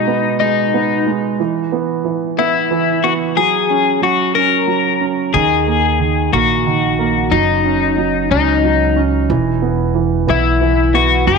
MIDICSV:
0, 0, Header, 1, 4, 480
1, 0, Start_track
1, 0, Tempo, 658617
1, 1015, Time_signature, 6, 3, 24, 8
1, 8296, End_track
2, 0, Start_track
2, 0, Title_t, "Clean electric guitar"
2, 0, Program_c, 0, 27
2, 0, Note_on_c, 0, 63, 62
2, 282, Note_off_c, 0, 63, 0
2, 291, Note_on_c, 0, 63, 55
2, 804, Note_off_c, 0, 63, 0
2, 1740, Note_on_c, 0, 64, 69
2, 2214, Note_on_c, 0, 66, 72
2, 2231, Note_off_c, 0, 64, 0
2, 2279, Note_off_c, 0, 66, 0
2, 2455, Note_on_c, 0, 68, 78
2, 2936, Note_off_c, 0, 68, 0
2, 2939, Note_on_c, 0, 66, 66
2, 3167, Note_off_c, 0, 66, 0
2, 3170, Note_on_c, 0, 70, 78
2, 3682, Note_off_c, 0, 70, 0
2, 3891, Note_on_c, 0, 68, 73
2, 4612, Note_off_c, 0, 68, 0
2, 4615, Note_on_c, 0, 66, 64
2, 5332, Note_on_c, 0, 63, 63
2, 5355, Note_off_c, 0, 66, 0
2, 6051, Note_off_c, 0, 63, 0
2, 6059, Note_on_c, 0, 63, 54
2, 6567, Note_off_c, 0, 63, 0
2, 7506, Note_on_c, 0, 64, 61
2, 7979, Note_on_c, 0, 66, 62
2, 7994, Note_off_c, 0, 64, 0
2, 8214, Note_off_c, 0, 66, 0
2, 8217, Note_on_c, 0, 68, 74
2, 8296, Note_off_c, 0, 68, 0
2, 8296, End_track
3, 0, Start_track
3, 0, Title_t, "Grand piano"
3, 0, Program_c, 1, 0
3, 0, Control_c, 1, 64, 127
3, 0, Note_on_c, 1, 47, 50
3, 0, Note_on_c, 1, 56, 38
3, 54, Note_on_c, 1, 59, 41
3, 289, Note_off_c, 1, 56, 0
3, 300, Note_on_c, 1, 56, 38
3, 530, Note_off_c, 1, 59, 0
3, 541, Note_on_c, 1, 59, 45
3, 765, Note_off_c, 1, 56, 0
3, 776, Note_on_c, 1, 56, 38
3, 986, Note_off_c, 1, 47, 0
3, 1004, Note_off_c, 1, 59, 0
3, 1008, Note_off_c, 1, 56, 0
3, 1019, Note_on_c, 1, 52, 50
3, 1025, Control_c, 1, 64, 0
3, 1170, Control_c, 1, 64, 127
3, 1257, Note_on_c, 1, 59, 41
3, 1480, Note_off_c, 1, 52, 0
3, 1491, Note_on_c, 1, 52, 41
3, 1726, Note_off_c, 1, 59, 0
3, 1736, Note_on_c, 1, 59, 41
3, 1963, Note_off_c, 1, 52, 0
3, 1974, Note_on_c, 1, 52, 47
3, 2202, Note_off_c, 1, 59, 0
3, 2213, Note_on_c, 1, 59, 40
3, 2439, Note_off_c, 1, 52, 0
3, 2446, Note_off_c, 1, 59, 0
3, 2454, Note_on_c, 1, 54, 49
3, 2462, Control_c, 1, 64, 0
3, 2593, Control_c, 1, 64, 127
3, 2699, Note_on_c, 1, 61, 38
3, 2917, Note_off_c, 1, 54, 0
3, 2928, Note_on_c, 1, 54, 41
3, 3158, Note_off_c, 1, 61, 0
3, 3169, Note_on_c, 1, 61, 42
3, 3395, Note_off_c, 1, 54, 0
3, 3406, Note_on_c, 1, 54, 45
3, 3639, Note_off_c, 1, 61, 0
3, 3650, Note_on_c, 1, 61, 35
3, 3875, Note_off_c, 1, 54, 0
3, 3884, Note_off_c, 1, 61, 0
3, 3894, Note_on_c, 1, 51, 52
3, 3902, Control_c, 1, 64, 0
3, 4042, Control_c, 1, 64, 127
3, 4131, Note_on_c, 1, 58, 37
3, 4357, Note_off_c, 1, 51, 0
3, 4368, Note_on_c, 1, 51, 38
3, 4605, Note_off_c, 1, 58, 0
3, 4616, Note_on_c, 1, 58, 43
3, 4847, Note_off_c, 1, 51, 0
3, 4858, Note_on_c, 1, 51, 43
3, 5084, Note_off_c, 1, 58, 0
3, 5095, Note_on_c, 1, 58, 41
3, 5321, Note_off_c, 1, 51, 0
3, 5326, Note_off_c, 1, 58, 0
3, 5334, Note_on_c, 1, 54, 52
3, 5341, Control_c, 1, 64, 0
3, 5475, Control_c, 1, 64, 127
3, 5575, Note_on_c, 1, 61, 38
3, 5801, Note_off_c, 1, 54, 0
3, 5812, Note_on_c, 1, 54, 41
3, 6041, Note_off_c, 1, 61, 0
3, 6052, Note_on_c, 1, 61, 42
3, 6283, Note_off_c, 1, 54, 0
3, 6294, Note_on_c, 1, 54, 45
3, 6521, Note_off_c, 1, 61, 0
3, 6532, Note_on_c, 1, 61, 43
3, 6759, Note_off_c, 1, 54, 0
3, 6765, Note_off_c, 1, 61, 0
3, 6776, Note_on_c, 1, 52, 54
3, 6782, Control_c, 1, 64, 0
3, 6915, Control_c, 1, 64, 127
3, 7012, Note_on_c, 1, 59, 39
3, 7238, Note_off_c, 1, 52, 0
3, 7249, Note_on_c, 1, 52, 44
3, 7476, Note_off_c, 1, 59, 0
3, 7487, Note_on_c, 1, 59, 42
3, 7724, Note_off_c, 1, 52, 0
3, 7735, Note_on_c, 1, 52, 46
3, 7961, Note_off_c, 1, 59, 0
3, 7972, Note_on_c, 1, 59, 42
3, 8200, Note_off_c, 1, 52, 0
3, 8205, Note_off_c, 1, 59, 0
3, 8213, Note_on_c, 1, 54, 53
3, 8223, Control_c, 1, 64, 0
3, 8296, Note_off_c, 1, 54, 0
3, 8296, End_track
4, 0, Start_track
4, 0, Title_t, "Upright bass"
4, 0, Program_c, 2, 32
4, 3893, Note_on_c, 2, 39, 70
4, 4583, Note_off_c, 2, 39, 0
4, 4612, Note_on_c, 2, 34, 71
4, 5303, Note_off_c, 2, 34, 0
4, 5332, Note_on_c, 2, 30, 72
4, 6023, Note_off_c, 2, 30, 0
4, 6057, Note_on_c, 2, 37, 72
4, 6746, Note_off_c, 2, 37, 0
4, 6775, Note_on_c, 2, 28, 74
4, 7465, Note_off_c, 2, 28, 0
4, 7494, Note_on_c, 2, 35, 70
4, 8185, Note_off_c, 2, 35, 0
4, 8216, Note_on_c, 2, 30, 73
4, 8296, Note_off_c, 2, 30, 0
4, 8296, End_track
0, 0, End_of_file